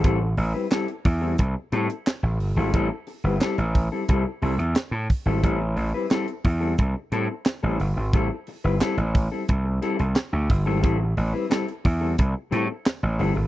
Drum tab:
HH |x-o-xxo-x-xxx-o-|x-o-xxo-x-oxx-o-|x-o-xxo-x-x-x-o-|x-o-xxo-x-xxx-o-|
CP |----x-------x---|----x-------x---|----x-------x---|----x-------x---|
SD |----o-------o---|----o-------o---|----o-------o---|----o-------o---|
BD |o-----o-o-------|o-----o-o-----o-|o-----o-o-------|o-----o-o-----o-|

HH |x-o-xxo-x-x-x-o-|
CP |----x-------x---|
SD |----o-------o---|
BD |o-----o-o-------|